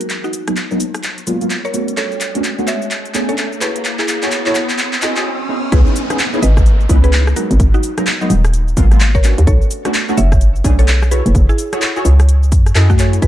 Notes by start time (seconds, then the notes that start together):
Already playing: F#3 G#3 A#3 B3 D#4, riser
0.01 closed hi-hat, shaker
0.10 clap, closed hi-hat, shaker
0.24 D#4 F#4, shaker
0.33 open hi-hat, shaker
0.48 F#3 G#3 A#3 B3 D#4, cross-stick, closed hi-hat, shaker
0.57 clap, closed hi-hat, shaker
0.71 F#3 G#3 A#3 B3 D#4, shaker
0.80 open hi-hat, shaker
0.94 cross-stick, open hi-hat, shaker
1.04 clap, closed hi-hat, shaker
1.18 closed hi-hat, shaker
1.27 F#3 G#3 A#3 B3 F4, open hi-hat, shaker
1.41 F#3 G#3 A#3 B3 F4, closed hi-hat, shaker
1.50 clap, closed hi-hat, shaker
1.65 A#4 C#5, shaker
1.74 A3 B3 C#4 D4 F#4, open hi-hat, shaker
1.88 closed hi-hat, shaker
1.97 A4 C#5, clap, closed hi-hat, shaker
2.12 shaker
2.21 clap, open hi-hat, shaker
2.35 A3 B3 C#4 D4 F#4, closed hi-hat, shaker
2.44 clap, closed hi-hat, shaker
2.58 A3 B3 C#4 D4 F#4, shaker
2.68 C#5 E5, clap, open hi-hat, shaker
2.82 shaker
2.91 clap, closed hi-hat, shaker
3.05 closed hi-hat, shaker
3.14 A3 B3 C#4 D4 G#4, clap, open hi-hat, shaker
3.29 A3 B3 C#4 D4 G#4 A4 C#5, open hi-hat, shaker
3.38 clap, closed hi-hat, shaker
3.52 shaker
3.61 E4 F#4 G#4 A4 B4 C#5, clap, open hi-hat, shaker
3.76 closed hi-hat, shaker
3.85 clap, closed hi-hat, shaker
3.99 E4 G#4, clap, shaker
4.08 clap, open hi-hat, shaker
4.23 E4 F#4 G#4 A4 C#5, clap, closed hi-hat, shaker
4.32 clap, closed hi-hat, shaker
4.46 E4 F#4 G#4 A4 C#5, clap, shaker
4.55 clap, open hi-hat, shaker
4.69 clap, open hi-hat, shaker
4.78 clap, closed hi-hat, swell, shaker
4.93 clap, closed hi-hat, shaker
5.02 E4 F#4 G#4 A4 D#5, clap, open hi-hat, shaker
5.16 E4 F#4 G#4 A4 D#5, clap, closed hi-hat, shaker
5.49 B3 C#4 D#4 E4 G#4
5.72 C#2 B3 C#4 D#4 E4 G#4 B4, kick, closed hi-hat, downlifter, shaker
5.87 shaker
5.96 open hi-hat, shaker
6.10 B3 C#4 D#4 E4 G#4, cross-stick, closed hi-hat, shaker
6.19 clap, closed hi-hat, shaker
6.34 B3 C#4 D#4 E4 G#4, shaker
6.42 G#1 B4 D#5, open hi-hat, shaker
6.57 kick, cross-stick, shaker
6.66 closed hi-hat, shaker
6.81 shaker
6.89 C#2 B3 C#4 D#4 E4 B4, kick, open hi-hat, shaker
7.04 B3 C#4 D#4 E4 G#4 B4, open hi-hat, shaker
7.13 clap, closed hi-hat, shaker
7.27 cross-stick, shaker
7.36 F#3 G#3 A#3 B3 D#4 F#4 A#4, open hi-hat, shaker
7.51 G#1, closed hi-hat, shaker
7.60 G#1, kick, closed hi-hat, shaker
7.74 D#4 F#4, shaker
7.83 open hi-hat, shaker
7.98 F#3 G#3 A#3 B3 D#4, cross-stick, closed hi-hat, shaker
8.07 clap, closed hi-hat, shaker
8.21 F#3 G#3 A#3 B3 D#4, shaker
8.30 D#1, open hi-hat, shaker
8.45 cross-stick, open hi-hat, shaker
8.54 closed hi-hat, shaker
8.68 shaker
8.77 G#1 F#3 G#3 A#3 B3 F4, kick, open hi-hat, shaker
8.91 F#3 G#3 A#3 B3 F4, cross-stick, closed hi-hat, shaker
9.00 clap, closed hi-hat, shaker
9.15 A#4 C#5, kick, shaker
9.24 A3 B3 C#4 D4 F#4, clap, open hi-hat, shaker
9.38 D#2, closed hi-hat, shaker
9.47 B1 A4 C#5, kick, closed hi-hat, shaker
9.62 shaker
9.71 open hi-hat, shaker
9.85 A3 B3 C#4 D4 F#4, cross-stick, closed hi-hat, shaker
9.94 clap, closed hi-hat, shaker
10.09 A3 B3 C#4 D4 F#4, shaker
10.17 F#1 C#5 E5, open hi-hat, shaker
10.32 kick, cross-stick, shaker
10.41 closed hi-hat, shaker
10.56 shaker
10.64 B1 A3 B3 C#4 D4 G#4, kick, open hi-hat, shaker
10.79 A3 B3 C#4 D4 G#4 A4 C#5, open hi-hat, shaker
10.88 clap, closed hi-hat, shaker
11.03 cross-stick, shaker
11.11 E4 F#4 G#4 A4 B4 C#5, open hi-hat, shaker
11.26 F#1, closed hi-hat, shaker
11.35 F#1, kick, closed hi-hat, shaker
11.49 E4 G#4, shaker
11.58 open hi-hat, shaker
11.73 E4 F#4 G#4 A4 C#5, cross-stick, closed hi-hat, shaker
11.82 clap, closed hi-hat, shaker
11.96 E4 F#4 G#4 A4 C#5, shaker
12.05 C#2, open hi-hat, shaker
12.20 cross-stick, open hi-hat, shaker
12.29 closed hi-hat, shaker
12.43 shaker
12.52 F#2, kick, open hi-hat, shaker
12.66 cross-stick, closed hi-hat, shaker
12.75 F#2 E4 F#4 G#4 A4 D#5, clap, closed hi-hat, shaker
12.90 A3 F#4, kick, shaker
12.99 E4 F#4 G#4 A4 C#5, clap, open hi-hat, shaker
13.13 closed hi-hat, shaker
13.22 C#2 G#4 B4, kick, closed hi-hat, shaker